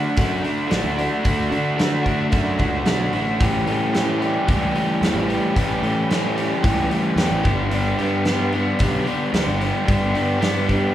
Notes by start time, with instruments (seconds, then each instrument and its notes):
Already playing: overdriven electric guitar D3 A3 D4 F#4
0.16 picked electric bass F#2, overdriven electric guitar D3 A3 D4 F#4, kick, open hi-hat
0.44 overdriven electric guitar A3 D4 F#4, open hi-hat
0.68 picked electric bass A1, overdriven electric guitar D3 A3 D4 F#4, snare, open hi-hat
0.84 picked electric bass D2
0.96 overdriven electric guitar A3 D4 F#4, open hi-hat
1.23 picked electric bass D2, overdriven electric guitar D3 A3 D4 F#4, kick, open hi-hat
1.49 picked electric bass D3, overdriven electric guitar A3 D4 F#4, open hi-hat
1.76 overdriven electric guitar D3 A3 D4 F#4, snare, open hi-hat
2.03 overdriven electric guitar A3 D4 F#4, kick, open hi-hat
2.30 picked electric bass F#2, overdriven electric guitar D3 A3 D4 F#4, kick, open hi-hat
2.58 picked electric bass C#2, overdriven electric guitar A3 D4 F#4, kick, open hi-hat
2.85 picked electric bass B1, overdriven electric guitar D3 A3 D4 F#4, snare, open hi-hat
3.11 picked electric bass A1, overdriven electric guitar D4 F#4, open hi-hat
3.16 overdriven electric guitar A3
3.40 picked electric bass A1, overdriven electric guitar A2 E3 G3 C#4 G4, kick, open hi-hat
3.66 picked electric bass A2, overdriven electric guitar G3 C#4 G4, open hi-hat
3.93 overdriven electric guitar E3 G3 C#4 G4, snare, open hi-hat
4.19 overdriven electric guitar G3 C#4 G4, open hi-hat
4.46 picked electric bass C#2, overdriven electric guitar A2 E3 G3 C#4 G4, kick, open hi-hat
4.74 overdriven electric guitar G3 C#4 G4, open hi-hat
5.01 picked electric bass E2, overdriven electric guitar A2 E3 G3 C#4 G4, snare, open hi-hat
5.14 picked electric bass A1
5.28 overdriven electric guitar G3 C#4 G4, open hi-hat
5.56 picked electric bass A1, overdriven electric guitar A2 E3 G3 C#4 G4, kick, open hi-hat
5.82 picked electric bass A2, overdriven electric guitar G3 C#4 G4, open hi-hat
6.10 overdriven electric guitar E3 G3 C#4 G4, snare, open hi-hat
6.36 overdriven electric guitar G3 C#4 G4, open hi-hat
6.63 picked electric bass C#2, overdriven electric guitar A2 E3 G3 C#4 G4, kick, open hi-hat
6.90 overdriven electric guitar G3 C#4 G4, open hi-hat
7.16 picked electric bass E2, overdriven electric guitar A2 E3 G3 C#4 G4, snare, open hi-hat
7.31 picked electric bass A1
7.43 picked electric bass G1, overdriven electric guitar G2 D3 G3 B3 D4 G4, kick, open hi-hat
7.70 overdriven electric guitar G2 D3 G3 B3 D4 G4, open hi-hat
7.98 picked electric bass G2, overdriven electric guitar G3 B3 D4 G4, open hi-hat
8.24 overdriven electric guitar G3 B3 D4 G4, snare, open hi-hat
8.53 overdriven electric guitar G3 B3 D4 G4, open hi-hat
8.79 picked electric bass B1, overdriven electric guitar G2 D3 G3 B3 D4 G4, kick, open hi-hat
9.05 overdriven electric guitar G3 B3 D4 G4, open hi-hat
9.32 picked electric bass D2, overdriven electric guitar G2 D3 G3 B3 D4 G4, snare, open hi-hat
9.47 picked electric bass G1
9.60 overdriven electric guitar G3 B3 D4 G4, open hi-hat
9.86 picked electric bass G1, overdriven electric guitar G2 D3 G3 B3 D4 G4, kick, open hi-hat
10.14 picked electric bass G2, overdriven electric guitar G3 B3 D4 G4, open hi-hat
10.39 overdriven electric guitar G3 B3 D4 G4, snare, open hi-hat
10.66 overdriven electric guitar G3 B3 D4 G4, kick, open hi-hat